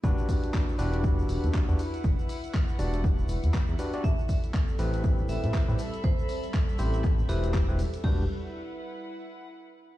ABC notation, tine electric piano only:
X:1
M:4/4
L:1/16
Q:"Swing 16ths" 1/4=120
K:Em
V:1 name="Tine electric piano"
[DFGB]6 [DFGB]6- [DFGB] [DFGB] z2 | z6 [DFGd]2 z6 [DFGB] [DFGd] | z6 [CEGB]6- [CEGB] [CEGB] z2 | z6 [CEGc]2 z2 [CEGB]3 [CEGB] z2 |
[DFGB]2 z12 z2 |]